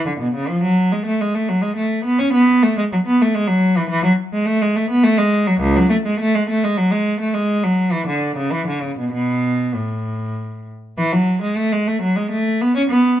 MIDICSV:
0, 0, Header, 1, 2, 480
1, 0, Start_track
1, 0, Key_signature, 3, "minor"
1, 0, Tempo, 574163
1, 392, Time_signature, 3, 2, 24, 8
1, 3276, Key_signature, 3, "major"
1, 6632, Tempo, 609137
1, 9032, Tempo, 591133
1, 10836, End_track
2, 0, Start_track
2, 0, Title_t, "Cello"
2, 0, Program_c, 0, 42
2, 53, Note_on_c, 0, 50, 60
2, 97, Note_off_c, 0, 50, 0
2, 168, Note_on_c, 0, 47, 65
2, 278, Note_off_c, 0, 47, 0
2, 291, Note_on_c, 0, 49, 71
2, 399, Note_off_c, 0, 49, 0
2, 408, Note_on_c, 0, 53, 86
2, 520, Note_off_c, 0, 53, 0
2, 529, Note_on_c, 0, 54, 87
2, 758, Note_off_c, 0, 54, 0
2, 772, Note_on_c, 0, 56, 74
2, 884, Note_off_c, 0, 56, 0
2, 884, Note_on_c, 0, 57, 81
2, 998, Note_off_c, 0, 57, 0
2, 1014, Note_on_c, 0, 56, 72
2, 1125, Note_off_c, 0, 56, 0
2, 1129, Note_on_c, 0, 57, 72
2, 1242, Note_off_c, 0, 57, 0
2, 1247, Note_on_c, 0, 54, 73
2, 1356, Note_on_c, 0, 56, 68
2, 1361, Note_off_c, 0, 54, 0
2, 1475, Note_off_c, 0, 56, 0
2, 1480, Note_on_c, 0, 57, 71
2, 1713, Note_on_c, 0, 59, 78
2, 1714, Note_off_c, 0, 57, 0
2, 1833, Note_off_c, 0, 59, 0
2, 1833, Note_on_c, 0, 61, 88
2, 1953, Note_on_c, 0, 59, 92
2, 1957, Note_off_c, 0, 61, 0
2, 2195, Note_off_c, 0, 59, 0
2, 2199, Note_on_c, 0, 57, 80
2, 2322, Note_off_c, 0, 57, 0
2, 2323, Note_on_c, 0, 56, 80
2, 2371, Note_off_c, 0, 56, 0
2, 2447, Note_on_c, 0, 54, 74
2, 2494, Note_off_c, 0, 54, 0
2, 2563, Note_on_c, 0, 59, 91
2, 2680, Note_off_c, 0, 59, 0
2, 2693, Note_on_c, 0, 57, 78
2, 2802, Note_on_c, 0, 56, 91
2, 2806, Note_off_c, 0, 57, 0
2, 2907, Note_on_c, 0, 54, 88
2, 2920, Note_off_c, 0, 56, 0
2, 3151, Note_off_c, 0, 54, 0
2, 3154, Note_on_c, 0, 52, 73
2, 3249, Note_off_c, 0, 52, 0
2, 3259, Note_on_c, 0, 52, 100
2, 3375, Note_on_c, 0, 54, 92
2, 3384, Note_off_c, 0, 52, 0
2, 3442, Note_off_c, 0, 54, 0
2, 3621, Note_on_c, 0, 56, 81
2, 3729, Note_on_c, 0, 57, 92
2, 3742, Note_off_c, 0, 56, 0
2, 3858, Note_off_c, 0, 57, 0
2, 3861, Note_on_c, 0, 56, 89
2, 3980, Note_on_c, 0, 57, 85
2, 3985, Note_off_c, 0, 56, 0
2, 4101, Note_on_c, 0, 59, 90
2, 4104, Note_off_c, 0, 57, 0
2, 4208, Note_on_c, 0, 57, 100
2, 4222, Note_off_c, 0, 59, 0
2, 4333, Note_on_c, 0, 56, 90
2, 4337, Note_off_c, 0, 57, 0
2, 4577, Note_on_c, 0, 54, 81
2, 4579, Note_off_c, 0, 56, 0
2, 4687, Note_on_c, 0, 37, 94
2, 4702, Note_off_c, 0, 54, 0
2, 4814, Note_off_c, 0, 37, 0
2, 4817, Note_on_c, 0, 54, 90
2, 4931, Note_on_c, 0, 57, 86
2, 4942, Note_off_c, 0, 54, 0
2, 4982, Note_off_c, 0, 57, 0
2, 5068, Note_on_c, 0, 56, 77
2, 5184, Note_on_c, 0, 57, 91
2, 5186, Note_off_c, 0, 56, 0
2, 5304, Note_off_c, 0, 57, 0
2, 5307, Note_on_c, 0, 56, 83
2, 5428, Note_on_c, 0, 57, 87
2, 5430, Note_off_c, 0, 56, 0
2, 5548, Note_off_c, 0, 57, 0
2, 5554, Note_on_c, 0, 56, 80
2, 5666, Note_on_c, 0, 54, 82
2, 5674, Note_off_c, 0, 56, 0
2, 5782, Note_on_c, 0, 56, 83
2, 5789, Note_off_c, 0, 54, 0
2, 6024, Note_on_c, 0, 57, 76
2, 6026, Note_off_c, 0, 56, 0
2, 6140, Note_on_c, 0, 56, 85
2, 6144, Note_off_c, 0, 57, 0
2, 6382, Note_on_c, 0, 54, 76
2, 6385, Note_off_c, 0, 56, 0
2, 6626, Note_on_c, 0, 52, 76
2, 6630, Note_off_c, 0, 54, 0
2, 6743, Note_on_c, 0, 50, 74
2, 6746, Note_off_c, 0, 52, 0
2, 6975, Note_on_c, 0, 49, 70
2, 6976, Note_off_c, 0, 50, 0
2, 7095, Note_off_c, 0, 49, 0
2, 7095, Note_on_c, 0, 52, 77
2, 7216, Note_off_c, 0, 52, 0
2, 7218, Note_on_c, 0, 50, 63
2, 7333, Note_on_c, 0, 49, 59
2, 7335, Note_off_c, 0, 50, 0
2, 7455, Note_off_c, 0, 49, 0
2, 7460, Note_on_c, 0, 47, 60
2, 7563, Note_off_c, 0, 47, 0
2, 7572, Note_on_c, 0, 47, 84
2, 8048, Note_off_c, 0, 47, 0
2, 8063, Note_on_c, 0, 45, 63
2, 8793, Note_off_c, 0, 45, 0
2, 9030, Note_on_c, 0, 52, 87
2, 9146, Note_off_c, 0, 52, 0
2, 9152, Note_on_c, 0, 54, 90
2, 9394, Note_on_c, 0, 56, 74
2, 9396, Note_off_c, 0, 54, 0
2, 9514, Note_off_c, 0, 56, 0
2, 9514, Note_on_c, 0, 57, 84
2, 9636, Note_off_c, 0, 57, 0
2, 9640, Note_on_c, 0, 56, 77
2, 9757, Note_on_c, 0, 57, 76
2, 9760, Note_off_c, 0, 56, 0
2, 9879, Note_off_c, 0, 57, 0
2, 9879, Note_on_c, 0, 54, 78
2, 9994, Note_on_c, 0, 56, 73
2, 9997, Note_off_c, 0, 54, 0
2, 10115, Note_on_c, 0, 57, 74
2, 10117, Note_off_c, 0, 56, 0
2, 10352, Note_off_c, 0, 57, 0
2, 10362, Note_on_c, 0, 59, 79
2, 10474, Note_on_c, 0, 61, 94
2, 10480, Note_off_c, 0, 59, 0
2, 10522, Note_off_c, 0, 61, 0
2, 10597, Note_on_c, 0, 59, 92
2, 10831, Note_off_c, 0, 59, 0
2, 10836, End_track
0, 0, End_of_file